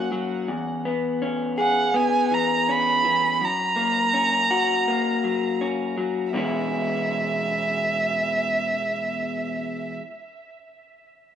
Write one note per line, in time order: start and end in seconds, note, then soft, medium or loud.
0.00 0.11 F#3 soft
0.00 0.49 A#3 soft
0.00 0.88 C#4 soft
0.00 0.48 F#4 soft
0.12 0.48 F#3 soft
0.48 2.31 E2 soft
0.85 1.93 B3 soft
1.22 2.69 C#4 soft
1.58 3.41 G#4 soft
1.58 1.98 F#5 soft
1.94 3.41 B3 soft
1.94 2.35 G#5 medium
2.31 3.03 E3 soft
2.31 2.72 A#5 medium
2.69 4.13 C#4 soft
2.69 3.46 B5 medium
3.05 3.41 E3 soft
3.41 5.24 F#2 soft
3.41 5.62 A#5 medium
3.76 4.87 A#3 soft
4.14 5.60 C#4 soft
4.51 6.34 F#4 soft
4.88 6.34 A#3 soft
5.24 5.96 F#3 soft
5.61 6.34 C#4 soft
5.98 6.34 F#3 soft
6.33 9.99 E2 soft
6.33 10.00 B2 soft
6.33 10.01 E3 soft
6.33 10.01 G#3 soft
6.33 10.02 C#4 soft
6.33 10.03 E4 soft
6.33 9.95 E5 soft